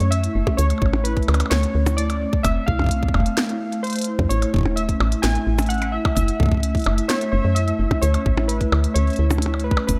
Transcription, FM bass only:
0.00 0.28 F#2 medium
0.35 0.43 F#1 medium
0.59 0.73 D2 loud
0.82 1.21 A1 medium
1.28 1.43 D2 medium
1.52 1.66 D2 medium
1.75 2.26 D2 medium
2.45 2.59 F1 loud
2.68 3.07 C2 medium
3.14 3.29 F1 medium
4.19 4.26 F2 loud
4.31 4.45 A1 loud
4.54 4.93 E1 medium
5.00 5.15 A1 medium
5.24 5.38 A1 medium
5.47 5.98 A1 medium
6.17 6.31 F#1 loud
6.40 6.79 C#2 medium
6.86 7.01 F#1 medium
7.33 7.40 F#1 loud
7.44 7.72 F#2 medium
7.79 7.87 F#1 medium
8.03 8.17 D2 loud
8.26 8.65 A1 medium
8.72 8.87 D2 loud
8.96 9.10 D2 medium
9.19 9.70 D2 medium
9.89 9.99 F1 loud

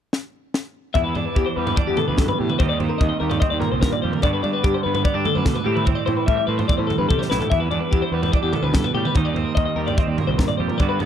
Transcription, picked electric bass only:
0.95 1.13 E2 medium
1.16 1.25 E2 medium
1.36 1.45 E2 medium
1.57 1.75 E2 medium
1.89 1.97 E2 medium
2.09 2.17 D2 medium
2.19 2.28 G2 medium
2.40 2.48 A2 medium
2.60 2.78 D#2 medium
2.79 2.89 D#2 medium
3.01 3.10 D#2 medium
3.21 3.39 D#2 medium
3.52 3.61 D#2 medium
3.73 3.81 C2 medium
3.83 3.91 G2 medium
4.04 4.12 F2 medium
4.24 4.41 G2 loud
4.44 4.53 G2 medium
4.64 4.73 G2 medium
4.86 5.03 G2 medium
5.15 5.24 G2 medium
5.36 5.45 F#2 medium
5.46 5.55 B2 medium
5.66 5.84 A2 medium
6.08 6.17 A2 medium
6.28 6.37 A2 medium
6.48 6.66 A2 medium
6.79 6.88 A2 medium
6.99 7.08 G2 medium
7.11 7.19 C3 medium
7.32 7.40 B1 medium
7.52 7.69 E2 medium
7.70 7.80 E2 medium
7.93 8.02 E2 medium
8.12 8.30 E2 medium
8.43 8.52 E2 medium
8.63 8.72 D2 medium
8.75 8.83 G2 medium
8.94 9.03 A2 medium
9.16 9.33 D#2 medium
9.35 9.44 D#2 medium
9.57 9.66 D#2 medium
9.76 9.94 D#2 medium
10.07 10.16 D#2 medium
10.28 10.37 C2 medium
10.39 10.48 G2 medium
10.60 10.68 F2 medium
10.80 10.98 G2 medium
11.01 11.05 G2 medium

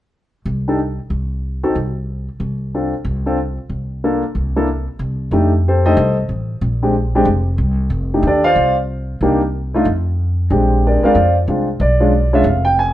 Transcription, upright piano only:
0.68 0.78 D4 medium
0.68 0.79 D#4 medium
0.68 0.78 G4 medium
0.68 0.79 A4 medium
1.64 1.75 C4 medium
1.64 1.75 D#4 medium
1.64 1.75 F#4 medium
1.64 1.75 A4 medium
2.74 2.93 C4 soft
2.74 2.92 D4 soft
2.74 2.93 F4 soft
2.74 2.93 A4 medium
3.26 3.37 C4 medium
3.26 3.37 D4 medium
3.26 3.37 F4 medium
3.26 3.37 A4 medium
4.04 4.22 A#3 medium
4.04 4.22 D4 soft
4.04 4.22 F4 soft
4.04 4.22 A4 medium
4.56 4.67 A#3 medium
4.56 4.67 D4 medium
4.56 4.67 E4 medium
4.56 4.67 A4 medium
5.32 5.51 A3 medium
5.32 5.51 D4 medium
5.32 5.51 D#4 medium
5.32 5.51 G4 medium
5.68 5.87 C4 soft
5.68 5.84 G4 soft
5.68 5.85 A4 medium
5.68 5.85 C5 medium
5.86 5.96 A3 medium
5.86 5.96 D4 medium
5.86 5.96 D#4 soft
5.86 5.96 G4 medium
5.86 6.16 A4 medium
5.86 6.16 C5 medium
5.86 6.16 D#5 medium
6.83 6.93 G#3 medium
6.83 6.93 C4 medium
6.83 6.93 D4 soft
6.83 6.93 G4 medium
7.15 7.26 G#3 medium
7.15 7.26 C4 medium
7.15 7.26 D4 medium
7.15 7.26 G4 medium
8.14 8.23 A3 soft
8.14 8.24 D4 medium
8.14 8.24 D#4 medium
8.14 8.24 G4 medium
8.27 8.45 D4 medium
8.27 8.46 G4 medium
8.27 8.45 A4 medium
8.27 8.43 D5 medium
8.44 8.75 F4 medium
8.44 8.75 C5 medium
8.44 8.75 D5 medium
8.44 8.74 F5 loud
9.22 9.40 A#3 medium
9.22 9.40 D4 medium
9.22 9.40 D#4 medium
9.22 9.41 G4 medium
9.74 9.85 A3 medium
9.74 9.85 D4 medium
9.74 9.85 D#4 medium
9.74 9.85 F4 medium
10.50 10.99 G#3 medium
10.50 11.00 C4 soft
10.50 10.85 D4 soft
10.50 11.00 G4 medium
10.87 11.03 D4 soft
10.87 11.05 G#4 soft
10.87 11.02 A#4 soft
10.87 11.04 D5 medium
11.03 11.14 G#3 medium
11.03 11.14 C4 medium
11.03 11.15 D4 medium
11.03 11.34 F4 medium
11.03 11.14 A#4 medium
11.03 11.35 C5 medium
11.03 11.35 D5 medium
11.03 11.35 F5 medium
11.48 11.67 G#3 soft
11.48 11.67 C4 soft
11.48 11.67 D4 soft
11.48 11.67 F4 medium
11.81 12.30 D5 medium
12.00 12.11 G#3 medium
12.00 12.11 C#4 medium
12.00 12.12 D4 medium
12.00 12.12 F4 medium
12.33 12.44 G#3 medium
12.33 12.44 C#4 medium
12.33 12.44 D4 medium
12.33 12.44 F4 medium
12.33 12.46 E5 medium
12.47 12.66 F5 medium
12.65 12.77 G5 medium
12.79 12.93 G#5 medium

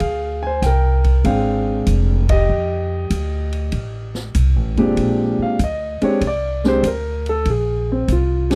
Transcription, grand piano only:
0.00 0.41 G#4 medium
0.00 0.39 F5 loud
0.43 0.63 C5 medium
0.43 0.61 G#5 medium
0.62 1.23 A#4 medium
0.62 1.21 G5 medium
1.24 2.21 G#3 medium
1.24 2.21 C4 medium
1.24 2.21 D4 medium
1.24 1.83 F5 medium
1.24 2.22 G5 medium
1.28 1.85 G#4 medium
2.30 4.33 G4 medium
2.30 4.32 D#5 loud
4.78 5.56 A#2 medium
4.78 5.56 G#3 medium
4.78 5.56 C4 medium
4.78 5.56 D4 medium
4.78 5.57 G4 medium
5.42 5.61 F5 medium
5.64 6.03 D#5 medium
6.02 6.20 G#3 medium
6.02 6.20 C4 medium
6.02 6.21 D4 medium
6.02 6.21 G4 medium
6.02 6.23 C#5 medium
6.27 6.66 D5 medium
6.65 6.82 G#3 medium
6.65 6.83 C4 medium
6.65 6.83 D4 medium
6.65 6.83 G4 medium
6.65 6.86 C5 loud
6.87 7.27 A#4 medium
7.29 7.47 A4 medium
7.50 7.90 G#4 medium
7.92 8.10 C4 medium
8.12 8.52 F4 medium
8.50 8.55 G#3 medium
8.50 8.55 C4 medium
8.50 8.55 D4 medium
8.50 8.55 G4 medium

